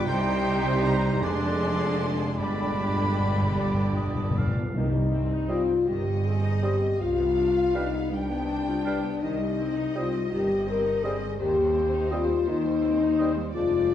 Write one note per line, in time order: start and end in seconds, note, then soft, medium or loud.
0.00 1.20 G3 medium
0.06 1.19 C2 medium
0.06 1.25 C2 medium
0.06 1.19 C3 medium
0.06 1.25 G3 medium
0.06 1.20 G3 medium
0.06 1.25 D#4 medium
0.06 1.19 D#4 medium
0.06 1.22 D#4 medium
0.06 1.20 G4 medium
0.06 1.25 C5 medium
0.06 1.20 C5 medium
0.06 0.82 G5 loud
0.06 0.86 G5 medium
0.84 1.23 A#5 medium
0.84 1.25 A#5 medium
1.23 2.41 F1 medium
1.23 2.40 F1 medium
1.23 2.40 F2 medium
1.23 2.39 D3 medium
1.23 3.58 G#3 medium
1.23 2.11 G#3 medium
1.23 4.43 D4 medium
1.23 2.11 D4 medium
1.23 2.39 D4 medium
1.23 2.38 G#4 medium
1.23 2.10 D5 medium
1.23 2.38 D5 medium
1.23 2.40 C6 medium
2.38 4.56 G1 medium
2.38 4.55 G2 medium
2.38 2.47 G2 soft
2.38 4.51 D3 medium
2.38 4.39 G3 medium
2.38 4.51 D4 medium
2.38 4.39 D4 medium
2.38 4.55 G4 medium
2.38 4.51 D5 medium
2.38 3.46 D5 medium
2.38 4.37 B5 medium
2.38 4.34 B5 medium
2.48 2.55 G2 soft
2.56 2.62 G2 soft
2.63 2.71 G2 soft
2.72 2.79 G2 soft
2.80 2.86 G2 soft
2.87 2.94 G2 soft
2.95 3.03 G2 soft
3.04 3.11 G2 soft
3.12 3.19 G2 soft
3.20 3.26 G2 soft
3.27 3.33 G2 soft
3.34 3.41 G2 soft
3.43 3.49 G2 soft
3.50 3.56 G2 medium
3.57 3.65 G2 medium
3.57 4.43 G3 medium
3.57 3.94 D5 medium
3.66 3.73 G2 medium
3.74 3.80 G2 medium
3.81 3.90 G2 medium
3.91 3.97 G2 medium
3.97 4.05 G2 medium
3.97 4.39 D#5 medium
4.07 4.14 G2 medium
4.15 4.22 G2 medium
4.23 4.29 G2 medium
4.30 4.38 G2 medium
4.38 4.46 G2 medium
4.38 4.76 F5 medium
4.47 4.53 G2 medium
4.55 4.61 G2 medium
4.62 4.70 G2 medium
4.76 5.68 C2 medium
4.76 5.69 C2 medium
4.76 5.83 C3 medium
4.76 4.93 D#3 soft
4.76 4.94 G3 soft
4.76 5.46 D#4 medium
4.76 6.96 C5 medium
4.95 5.13 G3 soft
5.14 5.32 C4 soft
5.32 5.50 D#4 soft
5.48 5.62 G3 medium
5.48 5.69 C4 soft
5.48 5.87 F4 medium
5.48 5.62 C5 medium
5.48 5.62 D#5 soft
5.69 5.88 G3 soft
5.87 6.82 G1 medium
5.87 6.81 G2 medium
5.87 6.06 D#3 medium
5.87 6.25 G4 medium
5.87 6.97 D#5 medium
6.07 6.25 G3 soft
6.25 6.44 C4 soft
6.25 6.63 G#4 medium
6.45 6.63 D#4 soft
6.62 6.76 G3 medium
6.62 6.82 C4 soft
6.62 6.99 G4 medium
6.62 6.76 C5 soft
6.62 6.76 D#5 medium
6.83 6.99 G3 soft
6.99 7.94 C2 medium
6.99 7.18 G3 soft
6.99 7.76 F4 medium
6.99 9.18 B4 medium
6.99 8.12 F5 medium
7.19 7.38 B3 soft
7.38 7.57 D4 soft
7.56 7.75 F4 soft
7.74 7.88 G3 medium
7.74 7.94 D4 soft
7.74 8.12 D#4 medium
7.74 7.88 B4 medium
7.74 7.88 F5 medium
7.94 8.12 B3 soft
8.12 9.04 C2 medium
8.12 8.31 G3 soft
8.12 9.20 D4 medium
8.12 9.23 G5 medium
8.31 8.49 B3 soft
8.50 8.68 D4 soft
8.68 8.86 F4 soft
8.85 8.99 G3 medium
8.85 9.04 D4 soft
8.85 8.99 B4 medium
8.85 8.98 F5 medium
9.04 9.22 B3 soft
9.22 10.14 C2 medium
9.22 9.39 D#3 soft
9.22 9.39 G3 soft
9.22 9.96 D#4 medium
9.22 13.53 C5 medium
9.22 11.37 D#5 medium
9.40 9.59 G3 soft
9.59 9.77 C4 soft
9.77 9.96 D#4 soft
9.95 10.08 G3 medium
9.95 10.14 C4 soft
9.95 10.32 F4 medium
9.95 10.09 C5 medium
9.95 10.09 D#5 medium
10.14 10.32 G3 soft
10.31 11.22 G1 medium
10.31 11.22 G2 medium
10.31 10.50 D#3 medium
10.31 10.68 G4 medium
10.50 10.68 G3 soft
10.67 10.86 C4 soft
10.67 11.04 A#4 medium
10.85 11.04 D#4 soft
11.03 11.17 G3 medium
11.03 11.22 C4 soft
11.03 11.40 G#4 medium
11.03 11.17 C5 medium
11.03 11.17 D#5 medium
11.23 11.40 G3 medium
11.39 12.30 D#2 medium
11.39 11.57 D#3 medium
11.39 12.10 G4 medium
11.39 13.50 C5 medium
11.57 11.76 G3 soft
11.75 11.94 C4 soft
11.94 12.12 D#4 soft
12.11 12.24 G3 medium
12.11 12.29 C4 soft
12.11 12.48 F4 medium
12.11 12.24 C5 medium
12.11 12.24 D#5 medium
12.29 12.47 G3 soft
12.47 13.37 D#2 medium
12.47 12.65 D#3 medium
12.47 13.38 D#4 medium
12.65 12.84 G3 medium
12.83 13.01 C4 soft
13.02 13.19 D#4 soft
13.19 13.32 G3 medium
13.19 13.38 C4 soft
13.19 13.32 C5 medium
13.19 13.31 D#5 medium
13.38 13.55 G3 soft
13.53 13.94 F1 medium
13.53 13.94 F2 medium
13.53 13.94 G#3 medium
13.53 13.94 D4 medium
13.53 13.94 F4 medium
13.53 13.94 C5 medium
13.53 13.94 D5 medium